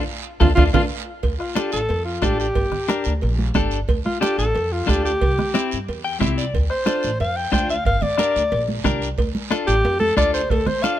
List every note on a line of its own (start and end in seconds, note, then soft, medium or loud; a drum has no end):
0.40 0.53 D2 loud
0.40 0.52 D4 medium
0.40 0.49 F4 medium
0.40 0.52 F4 medium
0.40 0.52 A4 medium
0.40 bombo low loud
0.40 low conga loud
0.40 high timbale medium
0.40 long guiro loud
0.55 0.70 D2 loud
0.55 0.69 D4 loud
0.55 0.64 F4 loud
0.55 0.69 F4 medium
0.55 0.69 A4 medium
0.55 bombo low loud
0.55 low conga medium
0.55 high timbale medium
0.55 long guiro medium
0.73 0.87 D2 loud
0.73 0.84 D4 medium
0.73 0.85 F4 medium
0.73 0.82 F4 medium
0.73 0.85 A4 medium
0.73 bombo low medium
0.73 low conga loud
0.73 high timbale loud
0.73 long guiro loud
1.23 1.37 D2 medium
1.23 bombo low medium
1.23 cowbell medium
1.23 high conga soft
1.23 long guiro medium
1.39 1.58 F4 medium
1.39 bombo rim medium
1.55 1.80 D4 medium
1.55 1.80 F4 medium
1.55 1.72 G4 medium
1.55 1.80 A4 medium
1.55 bombo rim medium
1.55 high conga medium
1.55 short guiro medium
1.72 1.87 A1 medium
1.72 2.04 A4 loud
1.72 short guiro medium
1.89 2.17 F2 loud
1.89 cowbell medium
1.89 high conga soft
1.89 long guiro medium
2.05 2.25 F4 medium
2.22 2.49 A1 medium
2.22 2.46 D4 medium
2.22 2.46 F4 medium
2.22 2.39 G4 medium
2.22 2.46 A4 medium
2.22 bombo low medium
2.22 bombo rim medium
2.22 high conga medium
2.22 low timbale medium
2.22 short guiro medium
2.40 3.04 G4 medium
2.40 short guiro medium
2.55 2.69 G1 medium
2.55 bombo low medium
2.55 cowbell medium
2.55 high conga soft
2.55 long guiro medium
2.72 bombo rim medium
2.72 low conga medium
2.88 3.12 D4 medium
2.88 3.12 G4 medium
2.88 3.13 A#4 medium
2.88 bombo rim medium
2.88 high conga medium
2.88 short guiro medium
3.04 3.20 D2 medium
3.04 short guiro medium
3.21 3.49 A#1 loud
3.21 cowbell medium
3.21 high conga soft
3.21 long guiro medium
3.39 high conga medium
3.54 3.82 G1 medium
3.54 3.79 D4 medium
3.54 3.79 G4 medium
3.54 3.79 A4 loud
3.54 bombo low medium
3.54 bombo rim medium
3.54 high conga medium
3.54 low conga medium
3.54 short guiro medium
3.71 short guiro medium
3.88 4.02 D2 medium
3.88 bombo low medium
3.88 cowbell loud
3.88 high conga soft
3.88 long guiro medium
4.05 4.20 F4 medium
4.05 bombo rim medium
4.05 high conga medium
4.21 4.45 D4 medium
4.21 4.45 F4 medium
4.21 4.37 G4 loud
4.21 4.45 A4 medium
4.21 bombo rim medium
4.21 high conga medium
4.21 short guiro medium
4.38 4.52 A1 medium
4.38 4.74 A4 loud
4.38 short guiro medium
4.55 4.82 F2 loud
4.55 cowbell medium
4.55 high conga soft
4.55 long guiro medium
4.72 4.91 F4 medium
4.87 5.15 D2 medium
4.87 5.11 D4 medium
4.87 5.11 F4 medium
4.87 5.04 G4 loud
4.87 5.11 A4 medium
4.87 bombo low medium
4.87 bombo rim medium
4.87 high conga medium
4.87 short guiro medium
5.05 5.69 G4 loud
5.05 short guiro medium
5.21 5.35 C2 medium
5.21 bombo low medium
5.21 cowbell loud
5.21 high conga soft
5.21 long guiro medium
5.39 bombo rim medium
5.39 high conga medium
5.39 low conga medium
5.54 5.78 C4 medium
5.54 5.78 E4 medium
5.54 5.78 G4 medium
5.54 bombo rim medium
5.54 high conga medium
5.54 short guiro medium
5.71 5.86 G2 medium
5.71 short guiro medium
5.88 6.15 E2 medium
5.88 cowbell medium
5.88 high conga soft
5.88 long guiro medium
6.04 6.20 G5 medium
6.20 6.48 C2 medium
6.20 6.44 C4 medium
6.20 6.44 E4 medium
6.20 6.44 G4 medium
6.20 6.36 E5 medium
6.20 bombo low medium
6.20 bombo rim medium
6.20 high conga medium
6.20 low conga medium
6.20 low timbale medium
6.20 short guiro medium
6.38 6.53 D5 medium
6.38 short guiro medium
6.54 6.67 D2 medium
6.54 bombo low medium
6.54 cowbell loud
6.54 high conga soft
6.54 long guiro medium
6.70 7.18 C5 loud
6.70 bombo rim medium
6.86 7.10 D4 medium
6.86 7.10 F4 medium
6.86 7.10 A4 medium
6.86 bombo rim medium
6.86 high conga loud
6.86 short guiro medium
7.03 7.17 A1 medium
7.03 short guiro medium
7.20 7.47 F2 medium
7.20 7.38 F5 loud
7.20 cowbell medium
7.20 high conga soft
7.20 long guiro medium
7.36 7.52 G5 medium
7.52 7.79 D2 medium
7.52 7.76 D4 medium
7.52 7.76 F4 medium
7.52 7.76 C5 medium
7.52 7.69 G5 medium
7.52 bombo low medium
7.52 bombo rim medium
7.52 high conga medium
7.52 low timbale medium
7.52 short guiro medium
7.70 7.86 F5 medium
7.70 short guiro medium
7.85 7.99 G1 medium
7.85 8.04 F5 medium
7.85 bombo low medium
7.85 cowbell loud
7.85 high conga soft
7.85 long guiro medium
8.02 8.67 D5 loud
8.02 high conga medium
8.02 low conga medium
8.18 8.42 D4 medium
8.18 8.42 G4 medium
8.18 8.42 A#4 medium
8.18 bombo rim medium
8.18 high conga loud
8.18 short guiro medium
8.36 8.49 D2 medium
8.36 short guiro medium
8.52 8.79 A#1 loud
8.52 cowbell medium
8.52 high conga soft
8.52 long guiro medium
8.69 high conga medium
8.84 9.12 C2 medium
8.84 9.08 D4 medium
8.84 9.08 G4 medium
8.84 9.09 A#4 loud
8.84 bombo low medium
8.84 bombo rim medium
8.84 high conga medium
8.84 low conga medium
8.84 low timbale medium
8.84 short guiro medium
9.02 short guiro medium
9.18 9.32 D2 medium
9.18 bombo low medium
9.18 cowbell loud
9.18 high conga soft
9.18 long guiro medium
9.35 high conga medium
9.51 9.74 D4 medium
9.51 9.74 F4 medium
9.51 9.75 A4 medium
9.51 bombo rim medium
9.51 high conga medium
9.51 short guiro medium
9.67 9.81 A1 medium
9.67 9.99 G4 loud
9.67 short guiro medium
9.84 10.11 F2 loud
9.84 cowbell medium
9.84 high conga soft
9.84 long guiro medium
10.00 10.16 A4 loud
10.00 high conga medium
10.17 10.44 D2 medium
10.17 10.40 D4 medium
10.17 10.40 F4 medium
10.17 10.41 A4 medium
10.17 10.33 D5 loud
10.17 bombo low medium
10.17 bombo rim medium
10.17 high conga medium
10.17 short guiro medium
10.34 10.52 C5 medium
10.34 short guiro medium
10.50 10.64 D2 medium
10.50 10.69 A4 medium
10.50 bombo low medium
10.50 cowbell loud
10.50 high conga soft
10.50 long guiro medium
10.66 10.84 C5 medium
10.66 bombo rim medium
10.66 high conga medium
10.66 low conga medium
10.83 10.99 D4 medium
10.83 10.99 F4 medium
10.83 10.99 A4 medium
10.83 10.99 F5 medium
10.83 bombo rim medium
10.83 high conga medium
10.83 short guiro medium